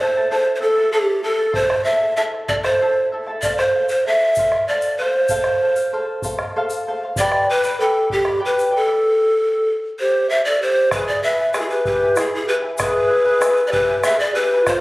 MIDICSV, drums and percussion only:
0, 0, Header, 1, 3, 480
1, 0, Start_track
1, 0, Tempo, 623701
1, 1193, Time_signature, 3, 2, 24, 8
1, 11395, End_track
2, 0, Start_track
2, 0, Title_t, "Bombo"
2, 1182, Note_on_c, 9, 37, 25
2, 1182, Note_on_c, 9, 43, 83
2, 1259, Note_off_c, 9, 37, 0
2, 1259, Note_off_c, 9, 43, 0
2, 1308, Note_on_c, 9, 37, 64
2, 1385, Note_off_c, 9, 37, 0
2, 1432, Note_on_c, 9, 37, 24
2, 1509, Note_off_c, 9, 37, 0
2, 1671, Note_on_c, 9, 37, 24
2, 1748, Note_off_c, 9, 37, 0
2, 1800, Note_on_c, 9, 37, 23
2, 1877, Note_off_c, 9, 37, 0
2, 1912, Note_on_c, 9, 37, 22
2, 1912, Note_on_c, 9, 43, 75
2, 1989, Note_off_c, 9, 37, 0
2, 1989, Note_off_c, 9, 43, 0
2, 2035, Note_on_c, 9, 37, 55
2, 2112, Note_off_c, 9, 37, 0
2, 2162, Note_on_c, 9, 37, 22
2, 2239, Note_off_c, 9, 37, 0
2, 2515, Note_on_c, 9, 37, 22
2, 2592, Note_off_c, 9, 37, 0
2, 2638, Note_on_c, 9, 43, 69
2, 2715, Note_off_c, 9, 43, 0
2, 2762, Note_on_c, 9, 37, 53
2, 2839, Note_off_c, 9, 37, 0
2, 3362, Note_on_c, 9, 43, 65
2, 3438, Note_off_c, 9, 43, 0
2, 3477, Note_on_c, 9, 37, 52
2, 3554, Note_off_c, 9, 37, 0
2, 4070, Note_on_c, 9, 43, 72
2, 4147, Note_off_c, 9, 43, 0
2, 4186, Note_on_c, 9, 37, 57
2, 4263, Note_off_c, 9, 37, 0
2, 4788, Note_on_c, 9, 43, 72
2, 4864, Note_off_c, 9, 43, 0
2, 4915, Note_on_c, 9, 37, 55
2, 4992, Note_off_c, 9, 37, 0
2, 5510, Note_on_c, 9, 43, 76
2, 5587, Note_off_c, 9, 43, 0
2, 5631, Note_on_c, 9, 37, 57
2, 5708, Note_off_c, 9, 37, 0
2, 6232, Note_on_c, 9, 43, 71
2, 6309, Note_off_c, 9, 43, 0
2, 6349, Note_on_c, 9, 37, 56
2, 6426, Note_off_c, 9, 37, 0
2, 8399, Note_on_c, 9, 37, 82
2, 8399, Note_on_c, 9, 43, 82
2, 8476, Note_off_c, 9, 37, 0
2, 8476, Note_off_c, 9, 43, 0
2, 8639, Note_on_c, 9, 37, 26
2, 8716, Note_off_c, 9, 37, 0
2, 8884, Note_on_c, 9, 37, 72
2, 8961, Note_off_c, 9, 37, 0
2, 9121, Note_on_c, 9, 43, 77
2, 9198, Note_off_c, 9, 43, 0
2, 9368, Note_on_c, 9, 37, 73
2, 9445, Note_off_c, 9, 37, 0
2, 9848, Note_on_c, 9, 37, 74
2, 9848, Note_on_c, 9, 43, 74
2, 9925, Note_off_c, 9, 37, 0
2, 9925, Note_off_c, 9, 43, 0
2, 10086, Note_on_c, 9, 37, 23
2, 10163, Note_off_c, 9, 37, 0
2, 10326, Note_on_c, 9, 37, 70
2, 10403, Note_off_c, 9, 37, 0
2, 10567, Note_on_c, 9, 43, 69
2, 10644, Note_off_c, 9, 43, 0
2, 10802, Note_on_c, 9, 37, 69
2, 10879, Note_off_c, 9, 37, 0
2, 11287, Note_on_c, 9, 37, 68
2, 11287, Note_on_c, 9, 43, 69
2, 11364, Note_off_c, 9, 37, 0
2, 11364, Note_off_c, 9, 43, 0
2, 11395, End_track
3, 0, Start_track
3, 0, Title_t, "Drums"
3, 2635, Note_on_c, 9, 82, 72
3, 2712, Note_off_c, 9, 82, 0
3, 2991, Note_on_c, 9, 82, 60
3, 3068, Note_off_c, 9, 82, 0
3, 3348, Note_on_c, 9, 82, 84
3, 3425, Note_off_c, 9, 82, 0
3, 3707, Note_on_c, 9, 82, 70
3, 3784, Note_off_c, 9, 82, 0
3, 4067, Note_on_c, 9, 82, 97
3, 4144, Note_off_c, 9, 82, 0
3, 4433, Note_on_c, 9, 82, 75
3, 4510, Note_off_c, 9, 82, 0
3, 4797, Note_on_c, 9, 82, 97
3, 4874, Note_off_c, 9, 82, 0
3, 5154, Note_on_c, 9, 82, 73
3, 5231, Note_off_c, 9, 82, 0
3, 5518, Note_on_c, 9, 82, 94
3, 5595, Note_off_c, 9, 82, 0
3, 5879, Note_on_c, 9, 82, 69
3, 5956, Note_off_c, 9, 82, 0
3, 6609, Note_on_c, 9, 82, 64
3, 6686, Note_off_c, 9, 82, 0
3, 8404, Note_on_c, 9, 82, 85
3, 8481, Note_off_c, 9, 82, 0
3, 8877, Note_on_c, 9, 82, 89
3, 8954, Note_off_c, 9, 82, 0
3, 9006, Note_on_c, 9, 82, 30
3, 9083, Note_off_c, 9, 82, 0
3, 9125, Note_on_c, 9, 82, 29
3, 9202, Note_off_c, 9, 82, 0
3, 9357, Note_on_c, 9, 82, 100
3, 9434, Note_off_c, 9, 82, 0
3, 9834, Note_on_c, 9, 82, 96
3, 9911, Note_off_c, 9, 82, 0
3, 10321, Note_on_c, 9, 82, 104
3, 10398, Note_off_c, 9, 82, 0
3, 10442, Note_on_c, 9, 82, 34
3, 10519, Note_off_c, 9, 82, 0
3, 10563, Note_on_c, 9, 82, 32
3, 10640, Note_off_c, 9, 82, 0
3, 10802, Note_on_c, 9, 82, 107
3, 10879, Note_off_c, 9, 82, 0
3, 11287, Note_on_c, 9, 82, 92
3, 11364, Note_off_c, 9, 82, 0
3, 11395, End_track
0, 0, End_of_file